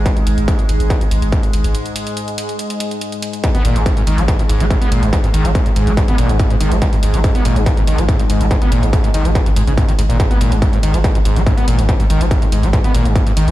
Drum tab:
HH |xxoxxxoxxxoxxxox|xxoxxxoxxxoxxxox|xxoxxxoxxxoxxxox|xxoxxxoxxxoxxxox|
BD |o---o---o---o---|----------------|o---o---o---o---|o---o---o---o---|

HH |xxoxxxoxxxoxxxox|xxoxxxoxxxoxxxox|xxoxxxoxxxoxxxox|xxoxxxoxxxoxxxox|
BD |o---o---o---o---|o---o---o---o---|o---o---o---o---|o---o---o---o---|